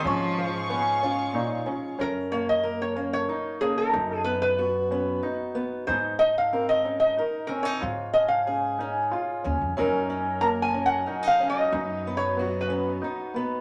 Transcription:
<<
  \new Staff \with { instrumentName = "Resonator guitar played with a steel bar" } { \time 3/4 \key fis \major \tempo 4 = 92 cis''4 r2 | ais'8 cis''16 dis''8 cis''8 cis''8. gis'16 ais'16~ | ais'8 b'16 b'4. r8. | bis'8 dis''16 eis''8 dis''8 dis''8. ais'16 cis''16~ |
cis''8 dis''16 eis''4. r8. | r4 \tuplet 3/2 { ais''8 gis''8 fis''8~ fis''8 eis''8 dis''8~ } | \tuplet 3/2 { dis''4 cis''8~ cis''8 b'8. r16 } r4 | }
  \new Staff \with { instrumentName = "String section" } { \time 3/4 \key fis \major << { <eis'' cis'''>2. | r2. | r2. | r2. |
r2. | <dis' ais'>2. | b2. | } \\ { gis'2. | r2. | r2. | r2. |
r2. | fis2.~ | fis2. | } >> }
  \new Staff \with { instrumentName = "Felt piano" } { \time 3/4 \key fis \major cis'4 b8 cis'8 dis'8 cis'8 | cis'4 ais8 cis'8 dis'8 cis'8 | dis'4 b8 cis'8 dis'8 b8 | dis'4 bis8 cis'8 dis'8 bis8 |
eis'4 cis'8 dis'8 eis'8 cis'8 | cis'4 ais8 cis'8 dis'8 cis'8 | dis'4 b8 cis'8 dis'8 b8 | }
  \new Staff \with { instrumentName = "Steel-string acoustic guitar" } { \time 3/4 \key fis \major << { r4 cis'8 eis'4. | r8 ais8 ais'8 ais8 dis'8 ais8 | r8 b8 fis'8 b8 dis'8 b8 | r8 dis'8 ais'8 dis'8 ais'8 cis'16 dis'16 |
r8 cis'8 gis'8 cis'8 eis'8 cis'8 | <fis cis' dis' ais'>8 cis'8 ais'8 cis'8 cis'16 dis'16 cis'8 | r8 b8 fis'8 b8 dis'8 b8 | } \\ { gis,8 eis4. ais,8 gis,8 | fis,2. | fis,2. | gis,2. |
gis,2. | fis,2. | fis,2. | } >> }
  \new Staff \with { instrumentName = "Cello" } { \clef bass \time 3/4 \key fis \major eis4 r2 | r2. | r2. | r2. |
r2. | r2. | r2. | }
  \new Staff \with { instrumentName = "Upright bass" } { \clef bass \time 3/4 \key fis \major gis,2 r4 | fis,2 r4 | fis,2 r4 | gis,2 r4 |
gis,2 r8 dis,16 eis,16 | fis,2 r4 | fis,2 r4 | }
>>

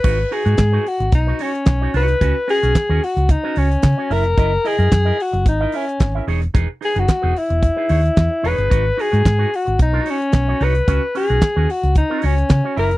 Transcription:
<<
  \new Staff \with { instrumentName = "Alto saxophone" } { \time 4/4 \key gis \minor \tempo 4 = 111 b'8 gis'4 fis'8 dis'8 cis'4 b'8~ | b'8 gis'4 fis'8 dis'8 cis'4 ais'8~ | ais'8 gis'4 fis'8 dis'8 cis'4 r8 | r8 gis'16 fis'8. e'2 b'8~ |
b'8 gis'4 fis'8 dis'8 cis'4 b'8~ | b'8 gis'4 fis'8 dis'8 cis'4 ais'8 | }
  \new Staff \with { instrumentName = "Clean electric guitar" } { \time 4/4 \key gis \minor <dis' fis' b'>16 r16 <dis' fis' b'>16 <dis' fis' b'>16 r16 <dis' fis' b'>16 r8. <dis' fis' b'>16 <dis' fis' cis''>16 r8 <dis' fis' cis''>16 <dis' fis' cis''>16 r16 | <cis' fis' b'>16 r16 <cis' fis' b'>16 <cis' fis' b'>16 r16 <cis' fis' b'>16 r8. <cis' fis' b'>16 <cis' fis' cis''>16 r8 <cis' fis' cis''>16 <e' ais' e''>16 r16 | <e' ais' dis''>16 r16 <e' ais' dis''>16 <e' ais' dis''>16 r16 <e' ais' dis''>16 r8. <e' ais' dis''>16 <e' ais' e''>16 r8 <e' ais' e''>16 <dis' gis' cis''>16 r16 | <dis' gis' b'>16 r16 <dis' gis' b'>16 <dis' gis' b'>16 r16 <dis' gis' b'>16 r8. <dis' gis' b'>16 <dis' gis' cis''>16 r8. <dis' gis' cis''>16 <dis' gis' b'>16 |
<dis' fis' b'>16 r16 <dis' fis' b'>16 <dis' fis' b'>16 r16 <dis' fis' b'>16 r8. <dis' fis' b'>16 <dis' fis' cis''>16 r8 <dis' fis' cis''>16 <dis' fis' cis''>16 r16 | <cis' fis' b'>16 r16 <cis' fis' b'>16 <cis' fis' b'>16 r16 <cis' fis' b'>16 r8. <cis' fis' b'>16 <cis' fis' cis''>16 r8 <cis' fis' cis''>16 <e' ais' e''>16 r16 | }
  \new Staff \with { instrumentName = "Fingered electric bass" } { \clef bass \time 4/4 \key gis \minor gis,,8 r16 gis,16 gis,8 r16 gis,,16 b,,8 r8 b,,8 bis,,8 | cis,16 r8 b,,16 r16 dis,16 r16 cis,8 r16 cis,8 cis16 r16 fis,,16 eis,,16 | fis,,8 r16 fis,16 fis,8 r16 fis,,16 gis,,8 r8 gis,,8 e,,8 | e,,16 r8 fis,,16 r16 e,,16 r16 e,,8 r16 dis,8 e,16 r16 e,,16 g,,16 |
gis,,8 r16 gis,16 gis,8 r16 gis,,16 b,,8 r8 b,,8 bis,,8 | cis,16 r8 b,,16 r16 dis,16 r16 cis,8 r16 cis,8 cis16 r16 fis,,16 eis,,16 | }
  \new DrumStaff \with { instrumentName = "Drums" } \drummode { \time 4/4 <cymc bd>8 hho16 hh16 <hc hh bd sn>8 hho16 hh16 <hh bd>8 hho16 hh16 <hc hh bd sn>8 hho16 hh16 | <hh bd>8 hho16 hh16 <hc hh bd sn>8 hho16 hh16 <hh bd>8 hho16 hh16 <hc hh bd sn>8 hho16 hh16 | <hh bd>8 hho16 hh16 <hc hh bd sn>8 hho16 hh16 <hh bd>8 hho16 hh16 <hc hh bd sn>8 hho16 hh16 | <hh bd>8 hho16 hh16 <hc hh bd sn>8 hho16 hh16 <hh bd>8 hho16 hh16 <hc hh bd sn>8 hho16 hh16 |
<hh bd>8 hho16 hh16 <hc hh bd sn>8 hho16 hh16 <hh bd>8 hho16 hh16 <hc hh bd sn>8 hho16 hh16 | <hh bd>8 hho16 hh16 <hc hh bd sn>8 hho16 hh16 <hh bd>8 hho16 hh16 <hc hh bd sn>8 hho16 hh16 | }
>>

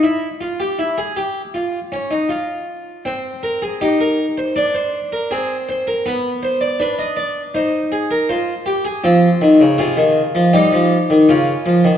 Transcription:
<<
  \new Staff \with { instrumentName = "Harpsichord" } { \time 4/4 \key c \phrygian \tempo 4 = 80 << { e'8 f'16 g'16 e'16 aes'16 g'8 f'8 des'16 ees'16 f'4 | c''8 bes'16 aes'16 g'16 bes'8 c''16 d''16 c''8 bes'16 aes'8 c''16 bes'16 | b'8 c''16 d''16 b'16 ees''16 d''8 c''8 aes'16 bes'16 c''4 | f'4 aes'4 g'4 f'4 | } \\ { r1 | c'4 ees'4 d'4 c'4 | b4 d'4 ees'4 f'8 g'16 aes'16 | c'4 f'4 ees'4 des'4 | } >> }
  \new Staff \with { instrumentName = "Harpsichord" } { \clef bass \time 4/4 \key c \phrygian r1 | r1 | r1 | f8 ees16 des16 c16 ees8 f16 g16 f8 ees16 des8 f16 ees16 | }
>>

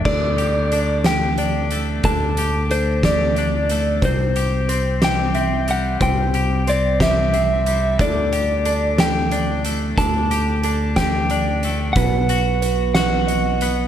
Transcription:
<<
  \new Staff \with { instrumentName = "Electric slide guitar" } { \time 6/8 \key d \mixolydian \tempo 4. = 61 d''4. g''4 r8 | a''4 c''8 d''4. | c''4. g''4 fis''8 | g''4 d''8 e''4. |
d''4. g''4 r8 | a''4. g''4. | fis''4. fis''4. | }
  \new Staff \with { instrumentName = "Clean electric guitar" } { \time 6/8 \key d \mixolydian a'4 a'4 d''4 | a'4 a'4 d''4 | c''4 c''4 e''4 | c''4 c''4 e''4 |
a'4 a'4 d''4 | a'4 a'4 d''4 | b'4 b'4 dis''4 | }
  \new Staff \with { instrumentName = "Clean electric guitar" } { \time 6/8 \key d \mixolydian d8 g'8 d'8 g'8 d'8 a8 | d8 g'8 d'8 g'8 d'8 a8 | c8 g'8 c'8 g'8 c'8 g8 | c8 g'8 c'8 g'8 c'8 g8 |
d8 g'8 d'8 g'8 d'8 a8 | d8 g'8 d'8 g'8 d'8 a8 | b,8 fis'4 fis'4 b8 | }
  \new Staff \with { instrumentName = "Fingered electric bass" } { \clef bass \time 6/8 \key d \mixolydian d,2. | d,2. | c,2. | c,2. |
d,2. | d,2. | b,,2. | }
  \new DrumStaff \with { instrumentName = "Drums" } \drummode { \time 6/8 <cymc bd>8 hh8 hh8 <hh sn>8 hh8 hh8 | <hh bd>8 hh8 hh8 <hh bd sn>8 hh8 hh8 | <hh bd>8 hh8 hh8 <hh sn>8 hh8 hh8 | <hh bd>8 hh8 hh8 <hh bd sn>8 hh8 hh8 |
<hh bd>8 hh8 hh8 <hh sn>8 hh8 hh8 | <hh bd>8 hh8 hh8 <hh bd sn>8 hh8 hh8 | <hh bd>8 hh8 hh8 <hh sn>8 hh8 hh8 | }
>>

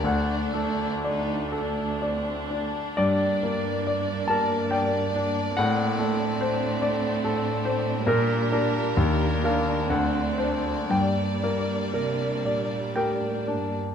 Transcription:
<<
  \new Staff \with { instrumentName = "Grand piano" } { \time 3/4 \key g \minor \tempo 4 = 64 << { fis''2 r4 | d''4. a''8 g''4 | fis''4. r4. | bes'4. f''8 fis''4 |
g''2 <g' g''>4 | } \\ { d,8 a8 d''8 a'8 d''8 d'8 | g,8 bes8 d''8 bes'8 d''8 d'8 | a,8 a8 c''8 d''8 a'8 c''8 | bes,8 <d' bes'>8 ees,8 <d' bes'>8 d,8 <d' c''>8 |
g,8 bes8 bes'8 d''8 bes'8 d'8 | } >> }
  \new Staff \with { instrumentName = "Violin section" } { \time 3/4 \key g \minor << { d''4 ees'8 d'8 c'8 d'8 | d''2.~ | d''2. | bes'2 d''4~ |
d''2. | } \\ { d'4 r2 | r2. | d'2.~ | d'2. |
d'2. | } >> }
  \new Staff \with { instrumentName = "Viola section" } { \time 3/4 \key g \minor << { d'2.~ | d'2. | c'2. | bes2 c'4 |
bes2. | } \\ { a2. | bes2.~ | bes4 a2 | g2 a4 |
g2. | } >> }
  \new Staff \with { instrumentName = "Cello section" } { \clef bass \time 3/4 \key g \minor d,2. | g,2. | a,2. | bes,4 ees,4 d,4 |
g,4 c8 bes,8 a,8 g,8 | }
>>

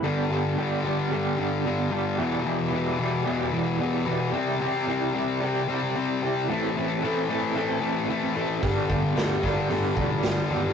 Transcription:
<<
  \new Staff \with { instrumentName = "Clean electric guitar" } { \time 4/4 \key g \major \tempo 4 = 112 <g, d g b d' g'>8 <g b d' g'>8 <g b d' g'>8 <g b d' g'>8 <g, d g b d' g'>8 <g b d' g'>4 <g b d' g'>8 | <e, b, e g e' g'>8 <e g e' g'>8 <e g e' g'>8 <e g e' g'>8 <e, b, e g e' g'>8 <e g e' g'>4 <e g e' g'>8 | <c e g e' g'>8 <g e' g'>8 <e g e' g'>8 <g e' g'>8 <c e g e' g'>8 <g e' g'>4 <g e' g'>8 | <a, e c' e' a'>8 <c' e' a'>8 <e c' e' a'>8 <c' e' a'>8 <a, e c' e' a'>8 <c' e' a'>4 <c' e' a'>8 |
<g, d g b d' g'>8 <g b d' g'>8 <g b d' g'>8 <g b d' g'>8 <g, d g b d' g'>8 <g b d' g'>4 <g b d' g'>8 | }
  \new Staff \with { instrumentName = "Distorted electric guitar" } { \clef bass \time 4/4 \key g \major <g, d g>8 <g, d g>8 <g, d g>8 <g, d g>8 <g, d g>8 <g, d g>8 <g, d g>8 <g, d g>8 | <e, b, e>8 <e, b, e>8 <e, b, e>8 <e, b, e>8 <e, b, e>8 <e, b, e>8 <e, b, e>8 <e, b, e>8 | <c g c'>8 <c g c'>8 <c g c'>8 <c g c'>8 <c g c'>8 <c g c'>8 <c g c'>8 <c g c'>8 | <a, e a>8 <a, e a>8 <a, e a>8 <a, e a>8 <a, e a>8 <a, e a>8 <a, e a>8 <a, e a>8 |
<g, d g>8 <g, d g>8 <g, d g>8 <g, d g>8 <g, d g>8 <g, d g>8 <g, d g>8 <g, d g>8 | }
  \new Staff \with { instrumentName = "Picked electric bass" } { \clef bass \time 4/4 \key g \major r1 | r1 | r1 | r1 |
g,,8 g,,8 d,8 g,,8 g,8 e,,8 g,,8 ees,8 | }
  \new DrumStaff \with { instrumentName = "Drums" } \drummode { \time 4/4 r4 r4 r4 r4 | r4 r4 r4 r4 | r4 r4 r4 r4 | r4 r4 r4 r4 |
<hho bd>8 bd8 <hho sn>8 <bd sn>8 hho8 bd8 <hho sn>4 | }
>>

